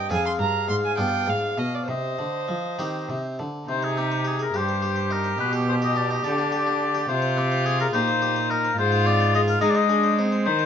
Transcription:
0.00 0.11 D#5 medium
0.00 0.11 G5 medium
0.10 0.36 F2 soft
0.10 0.38 F2 medium
0.10 0.36 C4 soft
0.10 0.94 F4 soft
0.10 0.95 G#4 soft
0.10 1.86 F5 medium
0.10 0.25 G#5 medium
0.26 0.32 C6 medium
0.39 0.66 G2 medium
0.39 0.66 G2 soft
0.39 0.68 A#5 medium
0.68 0.95 G#2 soft
0.68 0.96 G#2 medium
0.68 0.75 C6 medium
0.85 0.97 G#5 medium
0.97 1.25 G2 soft
0.97 1.26 G2 medium
0.97 1.25 B3 soft
0.97 1.25 D4 soft
0.97 1.85 F4 soft
0.97 1.31 G5 medium
1.27 1.54 G#2 soft
1.27 1.56 G#2 medium
1.27 1.60 F5 medium
1.58 1.86 B2 medium
1.58 1.85 B2 soft
1.58 1.76 D#5 medium
1.75 1.87 D5 medium
1.87 2.16 C3 soft
1.87 2.17 C3 medium
1.87 3.35 C5 medium
1.87 3.22 D#5 medium
2.19 2.47 D3 soft
2.19 2.46 D3 soft
2.48 2.76 F3 soft
2.48 2.77 F3 soft
2.79 3.07 D#3 medium
2.79 3.06 D#3 soft
2.79 3.43 C4 soft
2.79 3.43 D#4 soft
2.79 3.44 G4 soft
3.09 3.37 C3 medium
3.09 3.36 C3 soft
3.39 3.66 D3 soft
3.39 3.67 D3 soft
3.67 4.51 C3 soft
3.67 4.51 C3 medium
3.67 4.50 D#4 medium
3.67 3.86 C5 medium
3.83 4.00 G#4 medium
3.83 3.98 C5 soft
3.97 4.12 C4 soft
3.97 4.28 G4 medium
4.12 4.27 C5 soft
4.25 4.40 G4 soft
4.25 4.41 G#4 medium
4.39 4.54 G#4 soft
4.39 4.58 A#4 medium
4.54 5.36 G2 medium
4.54 5.38 G2 medium
4.54 4.70 G4 soft
4.54 7.07 G4 medium
4.54 5.14 C5 medium
4.69 4.84 C5 soft
4.82 4.98 G4 soft
4.96 5.12 C5 soft
5.10 5.26 D#4 soft
5.10 5.39 A#4 medium
5.24 5.39 C5 soft
5.38 6.21 B2 soft
5.38 6.24 B2 medium
5.38 5.53 B4 medium
5.53 5.69 G4 soft
5.68 5.75 C5 medium
5.82 5.97 G4 soft
5.82 5.99 D#5 medium
5.96 6.11 D4 soft
5.96 6.10 D5 medium
6.11 6.25 D#4 soft
6.11 6.26 D#5 medium
6.24 7.05 D3 medium
6.24 7.08 D3 medium
6.24 6.40 G4 soft
6.24 7.08 D5 loud
6.38 6.54 D4 soft
6.52 6.68 G4 soft
6.67 6.82 D4 soft
6.95 7.09 G4 medium
7.09 7.89 C3 medium
7.09 7.92 C3 medium
7.09 7.96 F4 medium
7.09 7.40 C5 medium
7.22 7.38 C5 medium
7.37 7.52 C4 soft
7.37 7.67 G4 medium
7.52 7.66 C5 soft
7.65 7.81 G4 soft
7.65 7.80 G#4 loud
7.80 7.94 G#4 soft
7.80 7.87 A#4 medium
7.93 8.74 A#2 medium
7.93 8.76 A#2 medium
7.93 8.76 D#4 medium
7.93 8.08 G4 medium
7.93 8.52 C5 loud
8.08 8.23 C5 soft
8.22 8.37 G4 medium
8.36 8.51 C5 medium
8.51 8.65 D#4 soft
8.51 8.78 A#4 medium
8.65 8.78 C5 medium
8.76 9.60 G#2 medium
8.76 9.59 G#2 medium
8.76 9.63 F4 loud
8.76 9.08 C5 loud
8.92 9.07 C5 medium
9.06 9.21 C4 medium
9.06 9.35 D5 loud
9.20 9.35 C5 medium
9.35 9.49 G#4 medium
9.35 9.41 D#5 loud
9.48 9.62 A#4 soft
9.48 9.60 F5 medium
9.61 10.42 G#3 medium
9.61 10.48 G#3 medium
9.61 9.88 D#4 medium
9.61 9.76 G#4 medium
9.61 9.71 D#5 loud
9.70 9.77 D5 medium
9.75 9.90 C5 medium
9.75 10.22 D#5 loud
9.89 10.20 D4 medium
9.89 10.04 G#4 medium
10.04 10.19 C5 medium
10.19 10.48 C4 medium
10.19 10.33 D#4 medium
10.32 10.46 C5 medium
10.45 10.66 D#3 medium
10.45 10.66 D#4 loud
10.45 10.66 C5 loud
10.59 10.66 C5 medium

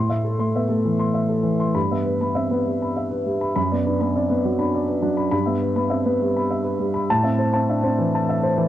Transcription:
0.00 1.71 A2 soft
0.00 0.17 C6 medium
0.09 0.33 A3 soft
0.09 0.33 E5 soft
0.25 0.48 A4 soft
0.39 0.63 A3 soft
0.39 0.63 C6 soft
0.56 0.70 B3 soft
0.56 0.79 E5 soft
0.69 0.93 A3 soft
0.69 0.93 A4 soft
0.85 1.09 E3 soft
1.00 1.23 C6 soft
1.14 1.38 E5 soft
1.29 1.54 A4 soft
1.43 1.68 E3 soft
1.60 1.75 C6 soft
1.75 3.52 G2 soft
1.75 1.99 B5 medium
1.91 2.15 B3 soft
1.91 2.15 E5 soft
2.06 2.30 B4 soft
2.21 2.45 B3 soft
2.21 2.45 B5 soft
2.35 2.50 C4 soft
2.35 2.60 E5 soft
2.51 2.75 B3 soft
2.51 2.75 B4 soft
2.66 2.90 G3 soft
2.82 3.06 B5 soft
2.97 3.20 E5 soft
3.11 3.35 B4 soft
3.26 3.50 G3 soft
3.41 3.54 B5 soft
3.56 5.28 F#2 soft
3.56 3.80 B5 medium
3.72 3.96 B3 soft
3.72 3.96 D5 soft
3.87 4.11 D4 soft
3.87 4.11 B4 soft
4.01 4.25 B3 soft
4.01 4.25 B5 soft
4.16 4.31 C4 soft
4.16 4.40 D5 soft
4.30 4.54 B3 soft
4.30 4.54 B4 soft
4.45 4.68 F#3 soft
4.59 4.82 D4 soft
4.59 4.82 B5 soft
4.74 4.97 D5 soft
4.88 5.12 B4 soft
5.02 5.26 F#3 soft
5.02 5.26 D4 soft
5.17 5.30 B5 soft
5.31 7.04 G2 medium
5.31 5.55 B5 medium
5.46 5.70 B3 soft
5.46 5.70 E5 soft
5.62 5.85 B4 soft
5.76 6.00 B3 soft
5.76 6.00 B5 soft
5.90 6.05 C4 soft
5.90 6.14 E5 soft
6.06 6.29 B3 soft
6.06 6.29 B4 soft
6.21 6.44 G3 soft
6.37 6.59 B5 soft
6.50 6.74 E5 soft
6.64 6.88 B4 soft
6.79 7.03 G3 medium
6.94 7.09 B5 soft
7.10 8.68 A2 medium
7.10 7.33 A5 medium
7.24 7.47 C4 soft
7.24 7.47 E5 soft
7.39 7.63 C5 soft
7.53 7.77 C4 soft
7.53 7.77 A5 medium
7.69 7.84 D4 soft
7.69 7.93 E5 medium
7.83 8.07 C4 soft
7.83 8.07 C5 medium
7.99 8.22 E3 medium
8.15 8.38 A5 medium
8.29 8.52 E5 medium
8.44 8.67 C5 medium
8.58 8.68 E3 medium

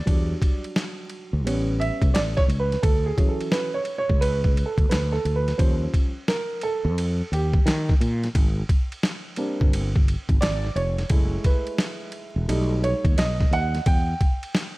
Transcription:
0.00 0.61 D5 medium
0.06 0.34 E2 medium
0.06 1.41 F#3 medium
0.06 1.41 G3 soft
0.06 1.41 D4 medium
0.06 kick loud
0.06 ride medium
0.42 kick medium
0.42 ride medium
0.64 ride soft
0.76 snare loud
0.76 hi-hat pedal soft
0.76 ride medium
1.10 ride soft
1.33 1.45 D2 medium
1.45 1.89 A1 loud
1.45 2.45 G3 medium
1.45 2.45 B3 medium
1.45 2.45 C#4 medium
1.45 ride medium
1.80 2.15 E5 medium
1.80 ride medium
2.02 2.14 C#2 medium
2.02 kick medium
2.02 ride soft
2.14 2.41 A1 medium
2.14 2.19 D5 loud
2.14 snare loud
2.14 hi-hat pedal medium
2.14 ride medium
2.37 2.42 C#5 loud
2.37 kick medium
2.37 snare soft
2.48 2.75 C#2 medium
2.48 ride soft
2.60 2.81 B4 medium
2.72 snare soft
2.72 ride soft
2.83 3.10 D2 medium
2.83 3.07 A4 medium
2.83 kick loud
2.83 ride medium
3.06 3.30 G#4 medium
3.17 3.67 E3 medium
3.17 3.68 F#3 medium
3.17 3.68 C#4 medium
3.17 kick medium
3.17 ride medium
3.29 3.53 A4 medium
3.41 ride soft
3.52 3.76 B4 medium
3.52 snare loud
3.52 hi-hat pedal soft
3.52 ride medium
3.74 3.97 C#5 medium
3.85 ride soft
3.98 4.22 C#5 medium
4.09 4.63 C#2 loud
4.09 kick medium
4.21 4.68 B4 loud
4.21 ride medium
4.44 kick medium
4.57 ride medium
4.66 4.90 A4 medium
4.77 4.87 D2 medium
4.77 kick medium
4.77 ride soft
4.89 5.17 D2 loud
4.89 5.13 B4 medium
4.89 snare loud
4.89 hi-hat pedal medium
4.89 ride medium
5.12 5.36 A4 medium
5.12 snare soft
5.25 5.51 D2 medium
5.25 ride medium
5.36 5.60 B4 medium
5.48 snare soft
5.48 ride soft
5.57 5.86 D#2 loud
5.57 6.08 F3 soft
5.57 6.08 G3 soft
5.57 6.09 C#4 medium
5.57 5.91 C5 medium
5.57 kick loud
5.57 ride medium
5.94 kick medium
5.94 ride medium
6.28 6.64 A#4 medium
6.28 snare loud
6.28 hi-hat pedal medium
6.28 ride medium
6.61 7.34 A4 loud
6.61 ride medium
6.85 7.21 F2 loud
6.98 ride medium
7.32 7.58 D#2 medium
7.32 7.97 G4 medium
7.32 ride medium
7.53 kick medium
7.66 7.92 D#3 loud
7.66 snare loud
7.66 hi-hat pedal medium
7.66 ride medium
7.89 kick medium
7.89 snare soft
8.00 8.27 A#2 medium
8.00 ride medium
8.23 snare soft
8.23 ride soft
8.35 8.62 G#1 loud
8.35 kick loud
8.35 ride medium
8.69 kick medium
8.69 ride medium
8.92 ride soft
9.03 snare loud
9.03 hi-hat pedal medium
9.03 ride medium
9.36 9.88 G3 medium
9.36 9.88 A#3 medium
9.36 9.88 C4 medium
9.36 9.88 D4 medium
9.36 ride medium
9.61 10.14 G1 medium
9.61 kick medium
9.73 ride medium
9.96 kick medium
10.08 ride medium
10.29 10.39 G#1 medium
10.29 kick medium
10.29 ride soft
10.41 10.68 G#1 medium
10.41 10.77 D5 loud
10.41 snare loud
10.41 hi-hat pedal medium
10.41 ride medium
10.65 snare soft
10.76 11.03 F1 medium
10.76 11.47 C#5 loud
10.76 ride medium
10.98 snare soft
10.98 ride soft
11.10 11.37 F#1 medium
11.10 12.44 G#3 medium
11.10 12.45 A3 medium
11.10 12.45 E4 medium
11.10 kick loud
11.10 ride medium
11.44 12.11 B4 medium
11.44 kick medium
11.44 ride medium
11.67 ride soft
11.78 snare loud
11.78 hi-hat pedal medium
11.78 ride medium
12.12 ride medium
12.36 12.46 E1 loud
12.48 12.93 B1 medium
12.48 13.83 G3 medium
12.48 13.83 A3 medium
12.48 13.83 D#4 medium
12.48 ride medium
12.84 13.19 C#5 medium
12.84 ride medium
13.04 13.14 D#2 medium
13.04 kick medium
13.04 ride soft
13.17 13.44 B1 medium
13.17 13.53 D#5 medium
13.17 snare loud
13.17 hi-hat pedal medium
13.17 ride medium
13.40 kick medium
13.40 snare soft
13.51 13.78 D#2 medium
13.51 13.88 F#5 loud
13.51 ride soft
13.75 snare soft
13.75 ride soft
13.86 14.13 E2 medium
13.86 14.78 G5 loud
13.86 kick loud
13.86 ride medium
14.21 kick medium
14.21 ride medium
14.43 ride soft
14.55 snare loud
14.55 hi-hat pedal medium
14.55 ride medium

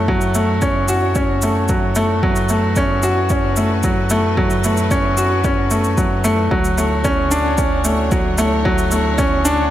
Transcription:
0.00 6.49 F#2 medium
0.00 0.08 F#3 medium
0.00 6.47 F#3 medium
0.00 0.35 A3 medium
0.00 0.62 C#4 medium
0.00 0.88 F#4 medium
0.00 9.70 F#4 medium
0.00 6.47 A4 medium
0.00 2.19 C#5 medium
0.08 0.34 F#3 medium
0.08 kick medium
0.21 shaker soft
0.34 0.50 A3 medium
0.34 shaker soft
0.62 0.87 C#4 medium
0.62 kick medium
0.62 shaker soft
0.88 1.14 F#4 medium
0.88 shaker medium
1.15 1.41 C#4 medium
1.15 kick medium
1.15 shaker soft
1.42 1.68 A3 medium
1.42 shaker medium
1.68 1.95 F#3 medium
1.68 kick medium
1.68 shaker soft
1.95 2.11 A3 medium
1.95 shaker medium
2.23 2.48 F#3 medium
2.23 6.47 B4 medium
2.23 kick medium
2.36 shaker soft
2.49 2.65 A3 medium
2.49 shaker soft
2.76 3.02 C#4 medium
2.76 kick medium
2.76 shaker soft
3.03 3.29 F#4 medium
3.03 shaker soft
3.29 3.56 C#4 medium
3.29 kick medium
3.29 shaker soft
3.56 3.82 A3 medium
3.56 shaker medium
3.83 4.09 F#3 medium
3.83 kick medium
3.83 shaker soft
4.10 4.26 A3 medium
4.10 shaker medium
4.37 4.63 F#3 medium
4.37 kick medium
4.50 shaker soft
4.64 4.79 A3 medium
4.64 shaker soft
4.77 shaker soft
4.91 5.16 C#4 medium
4.91 kick medium
4.91 shaker soft
5.17 5.43 F#4 medium
5.17 shaker medium
5.44 5.70 C#4 medium
5.44 kick loud
5.44 shaker soft
5.70 5.96 A3 medium
5.70 shaker medium
5.84 shaker soft
5.97 6.23 F#3 medium
5.97 kick medium
5.97 shaker soft
6.24 6.40 A3 medium
6.24 shaker medium
6.51 9.70 D2 medium
6.51 9.70 D3 medium
6.51 6.77 F#3 medium
6.51 9.70 C#5 medium
6.51 kick medium
6.64 shaker soft
6.78 6.93 A3 medium
6.78 shaker soft
7.04 7.30 C#4 medium
7.04 kick medium
7.04 shaker soft
7.31 7.57 D4 medium
7.31 shaker medium
7.58 7.84 C#4 medium
7.58 kick loud
7.58 shaker soft
7.84 8.10 A3 medium
7.84 shaker medium
8.11 8.37 F#3 medium
8.11 kick medium
8.11 shaker soft
8.38 8.54 A3 medium
8.38 shaker medium
8.65 8.91 F#3 medium
8.65 kick loud
8.78 shaker soft
8.91 9.07 A3 medium
8.91 shaker soft
9.18 9.44 C#4 medium
9.18 kick medium
9.18 shaker soft
9.45 9.70 D4 medium
9.45 shaker medium

